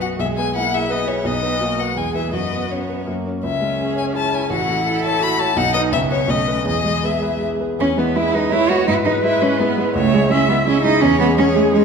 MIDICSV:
0, 0, Header, 1, 5, 480
1, 0, Start_track
1, 0, Tempo, 358209
1, 263, Time_signature, 3, 2, 24, 8
1, 7943, Tempo, 370370
1, 11303, Tempo, 355661
1, 15791, End_track
2, 0, Start_track
2, 0, Title_t, "Violin"
2, 0, Program_c, 0, 40
2, 14, Note_on_c, 0, 78, 60
2, 112, Note_off_c, 0, 78, 0
2, 260, Note_on_c, 0, 76, 75
2, 357, Note_off_c, 0, 76, 0
2, 502, Note_on_c, 0, 80, 77
2, 736, Note_off_c, 0, 80, 0
2, 746, Note_on_c, 0, 78, 82
2, 991, Note_on_c, 0, 76, 74
2, 1011, Note_off_c, 0, 78, 0
2, 1219, Note_on_c, 0, 75, 77
2, 1239, Note_off_c, 0, 76, 0
2, 1449, Note_on_c, 0, 73, 66
2, 1469, Note_off_c, 0, 75, 0
2, 1688, Note_on_c, 0, 75, 84
2, 1708, Note_off_c, 0, 73, 0
2, 2402, Note_on_c, 0, 78, 70
2, 2422, Note_off_c, 0, 75, 0
2, 2640, Note_on_c, 0, 80, 65
2, 2660, Note_off_c, 0, 78, 0
2, 2876, Note_off_c, 0, 80, 0
2, 2884, Note_on_c, 0, 76, 54
2, 3117, Note_off_c, 0, 76, 0
2, 3133, Note_on_c, 0, 75, 59
2, 3631, Note_on_c, 0, 73, 46
2, 3651, Note_off_c, 0, 75, 0
2, 4121, Note_off_c, 0, 73, 0
2, 4615, Note_on_c, 0, 76, 64
2, 5284, Note_off_c, 0, 76, 0
2, 5331, Note_on_c, 0, 80, 65
2, 5427, Note_off_c, 0, 80, 0
2, 5577, Note_on_c, 0, 81, 70
2, 5821, Note_on_c, 0, 80, 66
2, 5841, Note_off_c, 0, 81, 0
2, 6046, Note_off_c, 0, 80, 0
2, 6054, Note_on_c, 0, 78, 75
2, 6746, Note_off_c, 0, 78, 0
2, 6759, Note_on_c, 0, 81, 83
2, 7001, Note_on_c, 0, 83, 85
2, 7022, Note_off_c, 0, 81, 0
2, 7229, Note_on_c, 0, 81, 88
2, 7249, Note_off_c, 0, 83, 0
2, 7463, Note_on_c, 0, 78, 101
2, 7483, Note_off_c, 0, 81, 0
2, 7681, Note_off_c, 0, 78, 0
2, 7689, Note_on_c, 0, 75, 85
2, 7787, Note_off_c, 0, 75, 0
2, 7940, Note_on_c, 0, 76, 90
2, 8034, Note_off_c, 0, 76, 0
2, 8182, Note_on_c, 0, 73, 80
2, 8418, Note_on_c, 0, 75, 74
2, 8437, Note_off_c, 0, 73, 0
2, 8900, Note_off_c, 0, 75, 0
2, 8908, Note_on_c, 0, 75, 81
2, 9393, Note_on_c, 0, 76, 65
2, 9412, Note_off_c, 0, 75, 0
2, 9881, Note_off_c, 0, 76, 0
2, 10371, Note_on_c, 0, 61, 90
2, 10613, Note_on_c, 0, 59, 67
2, 10633, Note_off_c, 0, 61, 0
2, 10833, Note_on_c, 0, 64, 81
2, 10852, Note_off_c, 0, 59, 0
2, 11073, Note_on_c, 0, 63, 72
2, 11093, Note_off_c, 0, 64, 0
2, 11304, Note_off_c, 0, 63, 0
2, 11311, Note_on_c, 0, 64, 73
2, 11554, Note_on_c, 0, 66, 73
2, 11574, Note_off_c, 0, 64, 0
2, 11791, Note_off_c, 0, 66, 0
2, 11799, Note_on_c, 0, 64, 84
2, 11893, Note_off_c, 0, 64, 0
2, 12038, Note_on_c, 0, 63, 66
2, 12257, Note_off_c, 0, 63, 0
2, 12265, Note_on_c, 0, 64, 85
2, 12509, Note_on_c, 0, 61, 75
2, 12529, Note_off_c, 0, 64, 0
2, 12758, Note_on_c, 0, 59, 62
2, 12778, Note_off_c, 0, 61, 0
2, 13235, Note_off_c, 0, 59, 0
2, 13242, Note_on_c, 0, 76, 66
2, 13682, Note_off_c, 0, 76, 0
2, 13721, Note_on_c, 0, 76, 69
2, 14186, Note_off_c, 0, 76, 0
2, 14197, Note_on_c, 0, 76, 59
2, 14423, Note_on_c, 0, 75, 68
2, 14443, Note_off_c, 0, 76, 0
2, 14678, Note_on_c, 0, 73, 76
2, 14698, Note_off_c, 0, 75, 0
2, 15139, Note_off_c, 0, 73, 0
2, 15147, Note_on_c, 0, 73, 76
2, 15613, Note_off_c, 0, 73, 0
2, 15637, Note_on_c, 0, 73, 67
2, 15791, Note_off_c, 0, 73, 0
2, 15791, End_track
3, 0, Start_track
3, 0, Title_t, "Grand piano"
3, 0, Program_c, 1, 0
3, 0, Control_c, 1, 64, 127
3, 0, Note_on_c, 1, 35, 41
3, 0, Note_on_c, 1, 42, 35
3, 0, Note_on_c, 1, 59, 33
3, 0, Note_on_c, 1, 66, 35
3, 0, Note_on_c, 1, 71, 41
3, 29, Note_off_c, 1, 66, 0
3, 29, Note_on_c, 1, 66, 39
3, 167, Note_off_c, 1, 71, 0
3, 224, Note_off_c, 1, 35, 0
3, 252, Note_on_c, 1, 35, 50
3, 266, Note_off_c, 1, 66, 0
3, 290, Control_c, 1, 64, 0
3, 301, Note_off_c, 1, 42, 0
3, 301, Note_off_c, 1, 59, 0
3, 510, Control_c, 1, 64, 127
3, 510, Note_on_c, 1, 59, 48
3, 747, Note_on_c, 1, 64, 48
3, 886, Note_off_c, 1, 59, 0
3, 985, Note_on_c, 1, 68, 45
3, 1121, Note_off_c, 1, 64, 0
3, 1204, Note_on_c, 1, 71, 51
3, 1354, Note_off_c, 1, 68, 0
3, 1443, Note_on_c, 1, 68, 49
3, 1580, Note_off_c, 1, 71, 0
3, 1629, Note_off_c, 1, 35, 0
3, 1666, Note_on_c, 1, 35, 57
3, 1676, Note_off_c, 1, 68, 0
3, 1703, Control_c, 1, 64, 0
3, 1901, Note_on_c, 1, 59, 43
3, 1903, Control_c, 1, 64, 127
3, 2153, Note_on_c, 1, 66, 44
3, 2289, Note_off_c, 1, 59, 0
3, 2389, Note_on_c, 1, 71, 39
3, 2536, Note_off_c, 1, 66, 0
3, 2597, Note_off_c, 1, 35, 0
3, 2625, Note_on_c, 1, 40, 48
3, 2630, Note_off_c, 1, 71, 0
3, 2657, Control_c, 1, 64, 0
3, 2851, Control_c, 1, 64, 127
3, 2878, Note_on_c, 1, 71, 38
3, 2879, Note_on_c, 1, 64, 32
3, 3094, Note_off_c, 1, 71, 0
3, 3095, Note_off_c, 1, 64, 0
3, 3098, Note_off_c, 1, 40, 0
3, 3114, Note_on_c, 1, 42, 43
3, 3144, Control_c, 1, 64, 0
3, 3327, Control_c, 1, 64, 127
3, 3363, Note_on_c, 1, 59, 32
3, 3619, Note_on_c, 1, 61, 31
3, 3763, Note_off_c, 1, 59, 0
3, 3873, Note_on_c, 1, 71, 31
3, 4015, Note_off_c, 1, 61, 0
3, 4082, Note_off_c, 1, 42, 0
3, 4117, Note_off_c, 1, 71, 0
3, 4118, Note_on_c, 1, 42, 41
3, 4141, Control_c, 1, 64, 0
3, 4336, Control_c, 1, 64, 127
3, 4364, Note_on_c, 1, 61, 27
3, 4369, Note_on_c, 1, 73, 31
3, 4583, Note_off_c, 1, 61, 0
3, 4586, Note_off_c, 1, 73, 0
3, 4595, Note_off_c, 1, 42, 0
3, 4602, Note_on_c, 1, 37, 49
3, 4633, Control_c, 1, 64, 0
3, 4840, Note_on_c, 1, 56, 38
3, 4846, Control_c, 1, 64, 127
3, 5076, Note_on_c, 1, 61, 40
3, 5230, Note_off_c, 1, 56, 0
3, 5312, Note_on_c, 1, 73, 37
3, 5468, Note_off_c, 1, 61, 0
3, 5556, Note_on_c, 1, 68, 43
3, 5705, Note_off_c, 1, 73, 0
3, 5795, Note_on_c, 1, 73, 41
3, 5945, Note_off_c, 1, 68, 0
3, 6002, Note_off_c, 1, 37, 0
3, 6024, Note_on_c, 1, 33, 53
3, 6040, Note_off_c, 1, 73, 0
3, 6075, Control_c, 1, 64, 0
3, 6269, Note_on_c, 1, 57, 44
3, 6303, Control_c, 1, 64, 127
3, 6502, Note_on_c, 1, 64, 51
3, 6655, Note_off_c, 1, 57, 0
3, 6750, Note_on_c, 1, 73, 47
3, 6890, Note_off_c, 1, 64, 0
3, 6975, Note_on_c, 1, 69, 59
3, 7131, Note_off_c, 1, 73, 0
3, 7216, Note_on_c, 1, 73, 52
3, 7361, Note_off_c, 1, 69, 0
3, 7410, Note_off_c, 1, 33, 0
3, 7453, Note_on_c, 1, 35, 74
3, 7458, Note_off_c, 1, 73, 0
3, 7490, Control_c, 1, 64, 0
3, 7680, Control_c, 1, 64, 127
3, 7689, Note_on_c, 1, 63, 53
3, 7689, Note_on_c, 1, 71, 52
3, 7911, Note_off_c, 1, 63, 0
3, 7911, Note_off_c, 1, 71, 0
3, 7922, Note_off_c, 1, 35, 0
3, 7930, Note_on_c, 1, 37, 66
3, 7968, Control_c, 1, 64, 0
3, 8167, Control_c, 1, 64, 127
3, 8168, Note_on_c, 1, 61, 47
3, 8171, Note_on_c, 1, 71, 50
3, 8384, Note_off_c, 1, 61, 0
3, 8385, Note_off_c, 1, 71, 0
3, 8392, Note_off_c, 1, 37, 0
3, 8395, Note_on_c, 1, 35, 59
3, 8435, Control_c, 1, 64, 0
3, 8640, Control_c, 1, 64, 127
3, 8647, Note_on_c, 1, 61, 41
3, 8652, Note_on_c, 1, 71, 47
3, 8870, Note_off_c, 1, 61, 0
3, 8873, Note_off_c, 1, 71, 0
3, 8874, Note_off_c, 1, 35, 0
3, 8883, Note_on_c, 1, 40, 56
3, 8922, Control_c, 1, 64, 0
3, 9118, Control_c, 1, 64, 127
3, 9131, Note_on_c, 1, 56, 45
3, 9376, Note_on_c, 1, 59, 43
3, 9528, Note_off_c, 1, 56, 0
3, 9622, Note_on_c, 1, 71, 42
3, 9774, Note_off_c, 1, 59, 0
3, 9860, Note_on_c, 1, 68, 42
3, 10019, Note_off_c, 1, 71, 0
3, 10115, Note_on_c, 1, 71, 38
3, 10259, Note_off_c, 1, 68, 0
3, 10312, Note_off_c, 1, 40, 0
3, 10357, Note_on_c, 1, 40, 59
3, 10360, Note_off_c, 1, 71, 0
3, 10388, Control_c, 1, 64, 0
3, 10573, Control_c, 1, 64, 127
3, 10589, Note_off_c, 1, 40, 0
3, 10589, Note_on_c, 1, 56, 47
3, 10598, Note_on_c, 1, 64, 49
3, 10599, Note_on_c, 1, 71, 52
3, 10805, Note_off_c, 1, 56, 0
3, 10811, Note_off_c, 1, 64, 0
3, 10811, Note_off_c, 1, 71, 0
3, 10828, Note_on_c, 1, 56, 47
3, 10835, Note_on_c, 1, 64, 50
3, 10841, Note_on_c, 1, 71, 50
3, 11042, Note_off_c, 1, 56, 0
3, 11046, Note_off_c, 1, 64, 0
3, 11049, Note_off_c, 1, 71, 0
3, 11071, Note_on_c, 1, 56, 45
3, 11073, Note_on_c, 1, 64, 45
3, 11078, Note_on_c, 1, 71, 48
3, 11280, Note_off_c, 1, 56, 0
3, 11281, Note_off_c, 1, 64, 0
3, 11284, Note_off_c, 1, 71, 0
3, 11301, Note_on_c, 1, 56, 49
3, 11312, Note_on_c, 1, 64, 45
3, 11313, Note_on_c, 1, 71, 51
3, 11519, Note_off_c, 1, 56, 0
3, 11525, Note_off_c, 1, 64, 0
3, 11526, Note_off_c, 1, 71, 0
3, 11541, Note_on_c, 1, 56, 46
3, 11547, Note_on_c, 1, 64, 46
3, 11551, Note_on_c, 1, 71, 47
3, 11760, Note_off_c, 1, 56, 0
3, 11763, Note_off_c, 1, 64, 0
3, 11765, Note_off_c, 1, 71, 0
3, 11787, Note_on_c, 1, 44, 62
3, 11813, Control_c, 1, 64, 0
3, 12010, Control_c, 1, 64, 127
3, 12021, Note_off_c, 1, 44, 0
3, 12028, Note_on_c, 1, 56, 51
3, 12035, Note_on_c, 1, 64, 48
3, 12040, Note_on_c, 1, 71, 50
3, 12246, Note_off_c, 1, 56, 0
3, 12250, Note_off_c, 1, 64, 0
3, 12252, Note_off_c, 1, 71, 0
3, 12269, Note_on_c, 1, 56, 50
3, 12275, Note_on_c, 1, 64, 50
3, 12284, Note_on_c, 1, 71, 51
3, 12487, Note_off_c, 1, 56, 0
3, 12490, Note_off_c, 1, 64, 0
3, 12495, Note_off_c, 1, 71, 0
3, 12514, Note_on_c, 1, 56, 47
3, 12521, Note_on_c, 1, 64, 48
3, 12526, Note_on_c, 1, 71, 49
3, 12729, Note_off_c, 1, 56, 0
3, 12733, Note_off_c, 1, 64, 0
3, 12736, Note_off_c, 1, 71, 0
3, 12754, Note_on_c, 1, 56, 51
3, 12759, Note_on_c, 1, 64, 52
3, 12762, Note_on_c, 1, 71, 52
3, 12969, Note_off_c, 1, 56, 0
3, 12972, Note_off_c, 1, 64, 0
3, 12973, Note_off_c, 1, 71, 0
3, 12998, Note_on_c, 1, 56, 53
3, 13001, Note_on_c, 1, 64, 44
3, 13008, Note_on_c, 1, 71, 53
3, 13211, Note_off_c, 1, 56, 0
3, 13213, Note_off_c, 1, 64, 0
3, 13217, Note_off_c, 1, 71, 0
3, 13235, Note_on_c, 1, 37, 70
3, 13260, Control_c, 1, 64, 0
3, 13466, Note_off_c, 1, 37, 0
3, 13473, Control_c, 1, 64, 127
3, 13478, Note_on_c, 1, 56, 56
3, 13483, Note_on_c, 1, 64, 51
3, 13488, Note_on_c, 1, 68, 62
3, 13684, Note_off_c, 1, 56, 0
3, 13693, Note_off_c, 1, 64, 0
3, 13696, Note_off_c, 1, 68, 0
3, 13704, Note_on_c, 1, 56, 53
3, 13713, Note_on_c, 1, 64, 48
3, 13724, Note_on_c, 1, 68, 58
3, 13923, Note_off_c, 1, 56, 0
3, 13928, Note_off_c, 1, 64, 0
3, 13934, Note_off_c, 1, 68, 0
3, 13956, Note_on_c, 1, 56, 51
3, 13960, Note_on_c, 1, 64, 50
3, 13967, Note_on_c, 1, 68, 55
3, 14170, Note_off_c, 1, 56, 0
3, 14172, Note_off_c, 1, 64, 0
3, 14176, Note_off_c, 1, 68, 0
3, 14194, Note_on_c, 1, 56, 53
3, 14195, Note_on_c, 1, 64, 56
3, 14205, Note_on_c, 1, 68, 60
3, 14407, Note_off_c, 1, 56, 0
3, 14408, Note_off_c, 1, 64, 0
3, 14414, Note_off_c, 1, 68, 0
3, 14435, Note_on_c, 1, 56, 54
3, 14439, Note_on_c, 1, 64, 53
3, 14444, Note_on_c, 1, 68, 58
3, 14649, Note_off_c, 1, 56, 0
3, 14652, Note_off_c, 1, 64, 0
3, 14654, Note_off_c, 1, 68, 0
3, 14674, Note_on_c, 1, 40, 76
3, 14698, Control_c, 1, 64, 0
3, 14906, Note_off_c, 1, 40, 0
3, 14916, Note_on_c, 1, 56, 54
3, 14923, Control_c, 1, 64, 127
3, 14927, Note_on_c, 1, 61, 57
3, 14930, Note_on_c, 1, 68, 64
3, 15129, Note_off_c, 1, 56, 0
3, 15135, Note_off_c, 1, 61, 0
3, 15136, Note_off_c, 1, 68, 0
3, 15165, Note_on_c, 1, 56, 58
3, 15173, Note_on_c, 1, 68, 67
3, 15174, Note_on_c, 1, 61, 59
3, 15371, Note_off_c, 1, 56, 0
3, 15376, Note_off_c, 1, 61, 0
3, 15376, Note_off_c, 1, 68, 0
3, 15397, Note_on_c, 1, 56, 55
3, 15406, Note_on_c, 1, 61, 53
3, 15409, Note_on_c, 1, 68, 60
3, 15606, Note_off_c, 1, 56, 0
3, 15611, Note_off_c, 1, 61, 0
3, 15612, Note_off_c, 1, 68, 0
3, 15644, Note_on_c, 1, 56, 53
3, 15650, Note_on_c, 1, 61, 55
3, 15651, Note_on_c, 1, 68, 62
3, 15791, Note_off_c, 1, 56, 0
3, 15791, Note_off_c, 1, 61, 0
3, 15791, Note_off_c, 1, 68, 0
3, 15791, End_track
4, 0, Start_track
4, 0, Title_t, "Cello"
4, 0, Program_c, 2, 42
4, 0, Note_on_c, 2, 66, 42
4, 256, Note_on_c, 2, 68, 56
4, 276, Note_off_c, 2, 66, 0
4, 731, Note_off_c, 2, 68, 0
4, 739, Note_on_c, 2, 64, 56
4, 1681, Note_on_c, 2, 63, 55
4, 1702, Note_off_c, 2, 64, 0
4, 2156, Note_on_c, 2, 66, 48
4, 2176, Note_off_c, 2, 63, 0
4, 2634, Note_off_c, 2, 66, 0
4, 2642, Note_on_c, 2, 68, 58
4, 3129, Note_on_c, 2, 66, 44
4, 3149, Note_off_c, 2, 68, 0
4, 4368, Note_off_c, 2, 66, 0
4, 5097, Note_on_c, 2, 68, 52
4, 5564, Note_on_c, 2, 64, 57
4, 5584, Note_off_c, 2, 68, 0
4, 6024, Note_off_c, 2, 64, 0
4, 6032, Note_on_c, 2, 66, 59
4, 6503, Note_off_c, 2, 66, 0
4, 6509, Note_on_c, 2, 69, 61
4, 6993, Note_on_c, 2, 66, 74
4, 7013, Note_off_c, 2, 69, 0
4, 7449, Note_off_c, 2, 66, 0
4, 7457, Note_on_c, 2, 63, 68
4, 7940, Note_on_c, 2, 61, 59
4, 7960, Note_off_c, 2, 63, 0
4, 8896, Note_off_c, 2, 61, 0
4, 8903, Note_on_c, 2, 68, 57
4, 10101, Note_off_c, 2, 68, 0
4, 10376, Note_on_c, 2, 61, 85
4, 10467, Note_off_c, 2, 61, 0
4, 10601, Note_on_c, 2, 59, 72
4, 10842, Note_on_c, 2, 64, 78
4, 10862, Note_off_c, 2, 59, 0
4, 11070, Note_on_c, 2, 63, 79
4, 11090, Note_off_c, 2, 64, 0
4, 11297, Note_on_c, 2, 64, 93
4, 11317, Note_off_c, 2, 63, 0
4, 11538, Note_on_c, 2, 66, 81
4, 11558, Note_off_c, 2, 64, 0
4, 11765, Note_off_c, 2, 66, 0
4, 11773, Note_on_c, 2, 64, 84
4, 11873, Note_off_c, 2, 64, 0
4, 12019, Note_on_c, 2, 63, 82
4, 12118, Note_off_c, 2, 63, 0
4, 12273, Note_on_c, 2, 64, 76
4, 12519, Note_on_c, 2, 61, 78
4, 12539, Note_off_c, 2, 64, 0
4, 12755, Note_on_c, 2, 59, 78
4, 12775, Note_off_c, 2, 61, 0
4, 13234, Note_off_c, 2, 59, 0
4, 13251, Note_on_c, 2, 57, 91
4, 13495, Note_on_c, 2, 56, 79
4, 13515, Note_off_c, 2, 57, 0
4, 13701, Note_off_c, 2, 56, 0
4, 13709, Note_on_c, 2, 61, 88
4, 13945, Note_off_c, 2, 61, 0
4, 13968, Note_on_c, 2, 59, 76
4, 14060, Note_off_c, 2, 59, 0
4, 14188, Note_on_c, 2, 61, 101
4, 14421, Note_off_c, 2, 61, 0
4, 14429, Note_on_c, 2, 63, 93
4, 14661, Note_on_c, 2, 61, 103
4, 14681, Note_off_c, 2, 63, 0
4, 14907, Note_off_c, 2, 61, 0
4, 14918, Note_on_c, 2, 59, 98
4, 15012, Note_off_c, 2, 59, 0
4, 15165, Note_on_c, 2, 61, 86
4, 15257, Note_off_c, 2, 61, 0
4, 15397, Note_on_c, 2, 57, 82
4, 15490, Note_off_c, 2, 57, 0
4, 15635, Note_on_c, 2, 56, 87
4, 15791, Note_off_c, 2, 56, 0
4, 15791, End_track
5, 0, Start_track
5, 0, Title_t, "Viola"
5, 0, Program_c, 3, 41
5, 0, Note_on_c, 3, 59, 42
5, 251, Note_off_c, 3, 59, 0
5, 262, Note_on_c, 3, 56, 45
5, 747, Note_on_c, 3, 58, 52
5, 767, Note_off_c, 3, 56, 0
5, 1202, Note_off_c, 3, 58, 0
5, 1210, Note_on_c, 3, 59, 53
5, 1667, Note_off_c, 3, 59, 0
5, 1684, Note_on_c, 3, 59, 54
5, 2153, Note_on_c, 3, 58, 46
5, 2173, Note_off_c, 3, 59, 0
5, 2624, Note_off_c, 3, 58, 0
5, 2632, Note_on_c, 3, 56, 44
5, 3099, Note_off_c, 3, 56, 0
5, 3107, Note_on_c, 3, 59, 42
5, 4108, Note_on_c, 3, 58, 39
5, 4128, Note_off_c, 3, 59, 0
5, 4359, Note_off_c, 3, 58, 0
5, 4615, Note_on_c, 3, 61, 49
5, 6040, Note_on_c, 3, 64, 55
5, 6060, Note_off_c, 3, 61, 0
5, 7461, Note_off_c, 3, 64, 0
5, 7467, Note_on_c, 3, 63, 60
5, 7945, Note_on_c, 3, 59, 61
5, 7964, Note_off_c, 3, 63, 0
5, 8410, Note_on_c, 3, 57, 53
5, 8429, Note_off_c, 3, 59, 0
5, 8877, Note_on_c, 3, 56, 54
5, 8896, Note_off_c, 3, 57, 0
5, 10112, Note_off_c, 3, 56, 0
5, 10846, Note_on_c, 3, 68, 63
5, 11276, Note_off_c, 3, 68, 0
5, 11314, Note_on_c, 3, 73, 73
5, 11798, Note_on_c, 3, 71, 63
5, 11818, Note_off_c, 3, 73, 0
5, 13227, Note_off_c, 3, 71, 0
5, 13235, Note_on_c, 3, 73, 79
5, 13721, Note_on_c, 3, 76, 76
5, 13741, Note_off_c, 3, 73, 0
5, 14201, Note_on_c, 3, 64, 72
5, 14221, Note_off_c, 3, 76, 0
5, 14688, Note_on_c, 3, 68, 92
5, 14708, Note_off_c, 3, 64, 0
5, 15791, Note_off_c, 3, 68, 0
5, 15791, End_track
0, 0, End_of_file